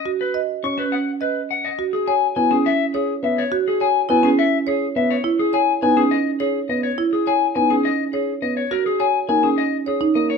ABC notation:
X:1
M:3/4
L:1/16
Q:1/4=104
K:Elyd
V:1 name="Clean electric guitar"
z B z2 c' B f z B z f d | z G g z g G e z G z e c | z G g z g G e z G z e c | z G g z g G d z G z d c |
z G g z g G d z G z d c | A G g z g G d z G z d c |]
V:2 name="Marimba"
F z d z2 C z2 d z3 | F z c z E C z2 c z3 | F z c z E C z2 c z3 | E z c z D C z2 c z3 |
E z c z D C z2 c z3 | F z c z D C z2 c D z2 |]
V:3 name="Grand piano"
z4 C z6 z | z4 B, z4 z B, z | z4 B, z4 z B, z | z4 B, z4 z B, z |
z4 B, z4 z B, z | z4 A, z4 z A, z |]